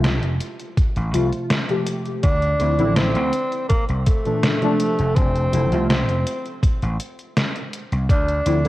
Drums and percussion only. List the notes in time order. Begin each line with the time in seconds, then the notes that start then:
0.04 snare, closed hi-hat
0.23 closed hi-hat
0.40 closed hi-hat
0.60 closed hi-hat
0.77 kick, closed hi-hat
0.96 closed hi-hat
1.14 closed hi-hat
1.32 closed hi-hat
1.50 snare, closed hi-hat
1.69 closed hi-hat
1.87 closed hi-hat
2.06 closed hi-hat
2.23 kick, closed hi-hat
2.42 closed hi-hat
2.60 closed hi-hat
2.79 closed hi-hat
2.96 snare, closed hi-hat
3.15 closed hi-hat
3.33 closed hi-hat
3.52 closed hi-hat
3.70 kick, closed hi-hat
3.89 closed hi-hat
4.06 kick, closed hi-hat
4.25 closed hi-hat
4.43 snare, closed hi-hat
4.62 closed hi-hat
4.80 closed hi-hat
4.99 closed hi-hat
5.16 kick, closed hi-hat
5.36 closed hi-hat
5.53 closed hi-hat
5.72 closed hi-hat
5.90 snare, closed hi-hat
6.09 closed hi-hat
6.27 closed hi-hat
6.46 closed hi-hat
6.63 kick, closed hi-hat
6.82 closed hi-hat
7.00 closed hi-hat
7.19 closed hi-hat
7.37 snare, closed hi-hat
7.56 closed hi-hat
7.73 closed hi-hat
7.92 closed hi-hat
8.09 kick, closed hi-hat
8.28 closed hi-hat
8.46 closed hi-hat
8.65 closed hi-hat